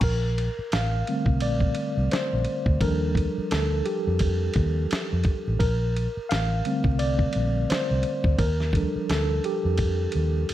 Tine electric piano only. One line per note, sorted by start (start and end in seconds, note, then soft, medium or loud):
0.04 0.74 A#4 loud
0.73 1.44 F5 loud
1.08 1.56 D3 medium
1.08 1.56 G3 medium
1.08 1.56 A3 medium
1.08 1.56 C4 medium
1.42 2.07 D5 loud
2.12 2.77 C5 medium
2.81 3.30 F3 medium
2.81 3.30 G3 soft
2.81 3.30 D4 medium
2.81 3.30 A4 medium
2.81 3.53 A#4 loud
3.52 3.87 A4 medium
3.86 5.21 G4 medium
5.59 6.31 A#4 loud
6.29 7.01 F5 loud
6.65 7.65 D3 medium
6.65 7.65 G3 medium
6.65 7.66 A3 soft
6.65 7.66 C4 medium
6.99 7.65 D5 loud
7.70 8.41 C5 medium
8.39 9.11 A#4 medium
8.75 9.23 F3 medium
8.75 9.23 G3 soft
8.75 9.23 D4 medium
8.75 9.08 A4 soft
9.10 9.45 A4 medium
9.45 10.54 G4 medium